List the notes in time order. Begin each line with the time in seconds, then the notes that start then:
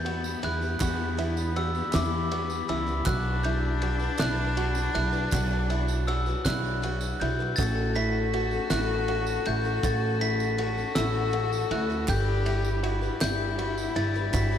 Already playing: E2 G3 B3 E5 B5 G6
0.05 E3 B3 E4 F#4 G4, ride
0.24 tambourine
0.43 E2 E3 B3 E4 G4 F#6, clap, ride
0.61 B3 E4 G4, tambourine
0.80 E2 E3 B3 E4 F#4 G4 D5, kick, clap, ride, tambourine
1.18 E3 B3 E4 G4, clap, ride, tambourine
1.37 tambourine
1.56 E3 B3 E4 F#4 G4 E6, ride
1.75 B3 E4 G4, tambourine
1.93 E2 E3 B3 E4 G4 D6, snare, clap, ride, tambourine
2.31 E3 B3 E4 F#4 G4, ride
2.50 tambourine
2.69 C#2 E3 B3 E4 G4 E6, clap, ride
2.87 B3 E4 G4, clap, tambourine
3.05 B1 B2 F#3 D4 F#4 B4 F#6, kick, clap, ride, tambourine
3.43 F#3 D4 E4 F#4 B4 G6, clap, ride, tambourine
3.81 F#3 D4 F#4 B4, ride
3.99 D4 F#4 B4, tambourine
4.18 B1 B2 F#3 D4 E4 F#4 B4 F#6, snare, clap, ride, tambourine
4.56 F#3 D4 F#4 B4, ride
4.75 tambourine
4.94 B1 F#3 D4 E4 F#4 B4 F#6, clap, ride
5.12 D4 F#4 B4, clap, tambourine
5.31 B1 B2 F#3 D4 F#4 B4 C#5, kick, clap, ride, tambourine
5.51 clap, tambourine
5.70 F#3 D4 E4 F#4 B4, clap, ride, tambourine
5.88 clap, tambourine
6.07 F#3 D4 F#4 B4 E6, clap, ride
6.26 D4 F#4 B4, clap, tambourine
6.45 B1 B2 F#3 D4 E4 F#4 B4 F#6, kick, snare, clap, ride, tambourine
6.64 tambourine
6.82 F#3 D4 F#4 B4, clap, ride, tambourine
7.01 clap, tambourine
7.19 B1 F#3 D4 E4 F#4 B4 G6, ride
7.39 D4 F#4 B4, clap
7.56 A1 A3 C#4 F#4 A4 C#5 A5 A6, kick, clap, ride, tambourine
7.95 A3 C#4 E4 F#4 A4 B6, clap, ride, tambourine
8.33 A3 C#4 F#4 A4, ride
8.51 C#4 F#4 A4, tambourine
8.70 A1 A3 C#4 E4 F#4 A4 F#6, snare, clap, ride, tambourine
9.08 A3 C#4 F#4 A4, ride
9.27 tambourine
9.46 A1 A3 C#4 E4 F#4 A4 G6, clap, ride
9.64 C#4 F#4 A4, clap, tambourine
9.83 A1 A3 C#4 F#4 A4 A6, kick, clap, ride, tambourine
10.20 A3 C#4 E4 F#4 A4 B6, clap, ride, tambourine
10.40 tambourine
10.57 A3 C#4 F#4 A4, ride
10.77 C#4 F#4 A4, tambourine
10.95 A1 A3 C#4 E4 F#4 A4 E6, snare, clap, ride, tambourine
11.32 A3 C#4 F#4 A4, ride
11.53 tambourine
11.70 D2 A3 C#4 E4 F#4 A4 F#6, clap, ride
11.89 C#4 F#4 A4, clap, tambourine
12.08 G1 G3 D4 G4 B4 D5 B5 G6, kick, clap, ride, tambourine
12.45 G3 D4 E4 G4 B4, clap, ride, tambourine
12.65 tambourine
12.83 G3 D4 E4 F#4 G4 B4, ride
13.01 D4 G4 B4, tambourine
13.21 G1 G3 D4 E4 G4 B4 G6, snare, clap, ride, tambourine
13.58 G3 D4 F#4 G4 B4, ride
13.78 tambourine
13.96 G1 G3 D4 E4 G4 B4 A6, clap, ride
14.15 D4 G4 B4, clap, tambourine
14.33 G1 G3 D4 F#4 G4 B4 C#5 B6, kick, clap, ride, tambourine
14.53 clap, tambourine